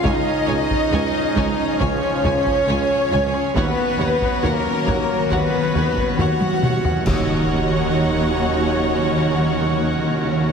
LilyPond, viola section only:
\new Staff \with { instrumentName = "Viola section" } { \time 4/4 \key ees \minor \tempo 4 = 68 <f' des''>8 <f' des''>8 <f' des''>8 <f' des''>8 <f' des''>8 <f' des''>8 <f' des''>8 <f' des''>8 | <fis' cis''>8 <fis' cis''>8 <fis' cis''>8 <fis' cis''>8 <fis' cis''>8 <fis' cis''>8 <fis' cis''>8 <fis' cis''>8 | <ges' des''>1 | }